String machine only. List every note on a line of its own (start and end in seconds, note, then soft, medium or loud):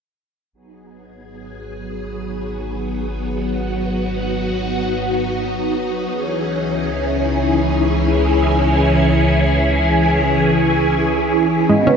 0.53 6.07 F#3 medium
0.53 6.07 B3 medium
0.53 8.86 D#4 medium
0.53 3.30 G#4 medium
3.32 6.09 F#4 medium
6.11 11.66 E3 medium
6.11 11.66 C#4 medium
6.11 11.66 G#4 medium
8.91 11.67 E4 medium
11.70 11.97 D#3 medium
11.70 11.97 G#3 medium
11.70 11.97 B3 medium
11.70 11.97 F#4 medium